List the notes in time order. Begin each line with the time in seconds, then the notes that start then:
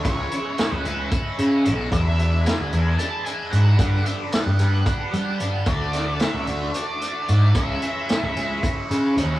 Already playing: E5
0.03 C#2 C#3 E3 G#3 C#4 E4 G#4 C#5 C#6, kick, closed hi-hat
0.30 G#3 C#4 E4, closed hi-hat
0.57 E3 G#3 C#4 E4, snare, closed hi-hat
0.72 C#2 B4
0.84 C#2 G#3 C#4 E4, closed hi-hat
1.11 kick, closed hi-hat
1.38 C#3 G#3 C#4 E4, closed hi-hat
1.64 B1 C#3 E3 G#3 C#4 E4, closed hi-hat
1.91 E2 B2 E3 G#3 D4 E4 D5 E5 B5, kick, closed hi-hat
2.19 E3 G#3 D4 E4, closed hi-hat
2.44 E3 G#3 D4 E4 G#5, snare, closed hi-hat
2.60 D2
2.71 E2 E3 G#3 D4 E4, closed hi-hat
2.98 A5, closed hi-hat
3.25 E3 G#3 D4 E4 G#5, closed hi-hat
3.51 E2 G#2 B2 E3 G#3 D4 E4 F#5, closed hi-hat
3.78 G2 D3 G3 B3 D4 G4 F#5, kick, closed hi-hat
4.05 G3 B3 D4 G4 E5, closed hi-hat
4.31 G3 B3 D4 G4 F#5, snare, closed hi-hat
4.46 G2
4.57 G2 G3 B3 D4 G4, closed hi-hat
4.86 kick, closed hi-hat
5.11 G3 B3 D4 G4, closed hi-hat
5.38 G2 D3 G3 B3 D4 G4, closed hi-hat
5.66 D2 D3 A3 D4 E4 F#4 D5 A5, kick, closed hi-hat
5.92 A3 D4 F#4, snare, closed hi-hat
6.20 D3 A3 D4 F#4 E5, snare, closed hi-hat
6.34 C#2
6.46 D2 A3 D4 F#4, closed hi-hat
6.74 D5, closed hi-hat
7.01 A3 D4 F#4, closed hi-hat
7.28 G#2 D3 A3 D4 F#4, closed hi-hat
7.54 C#2 C#3 E3 G#3 C#4 E4 C#5 E5 G#5 C#6, kick, closed hi-hat
7.82 G#3 C#4 E4, closed hi-hat
8.09 E3 G#3 C#4 E4, snare, closed hi-hat
8.23 C#2
8.36 C#2 G#3 C#4 E4, closed hi-hat
8.63 kick, closed hi-hat
8.89 C#3 G#3 C#4 E4, closed hi-hat
9.16 D#2 C#3 E3 G#3 C#4 E4, closed hi-hat